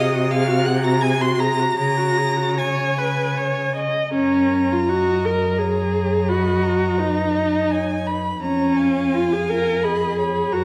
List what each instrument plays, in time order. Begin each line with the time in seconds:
Already playing: cello C3, viola G#4, violin D#5 D#6
0.13 viola F#4
0.31 viola G#4, violin F5 F6
0.47 viola F#4
0.65 viola G#4, violin F#5 F#6
0.83 viola F#4, violin A#5 A#6
1.01 viola G#4, violin G#5 G#6
1.21 viola F#4, violin C6 C7
1.39 viola G#4, violin A#5 A#6
1.59 viola F#4
1.78 cello C#3, viola G#4, violin A#5 A#6
1.97 viola F#4
2.17 viola G#4
2.37 viola F#4
2.58 viola C#5, violin G#5 G#6
2.98 viola B4
3.37 viola C#5
3.76 viola D#5
4.14 cello F#2, viola C#4, violin A#4 A#5
4.71 viola F4
4.89 viola F#4, violin D#5
5.25 viola A#4
5.59 viola G#4, violin C#5 A#5
5.94 violin C#5
6.28 viola F#4, violin D#5 B5
6.63 violin A#5
6.98 viola D#4, violin B4
7.35 violin D#5
7.71 violin C#5 G#5
8.07 violin B4 B5
8.42 cello F2, viola C#4, violin C#5 A#5
8.77 violin F5 G#5
9.13 viola F4
9.33 viola G#4
9.49 viola A#4
9.83 viola G#4, violin D#5 B5
10.18 violin C#5 B5
10.52 cello F#2, viola F#4, violin A#4 A#5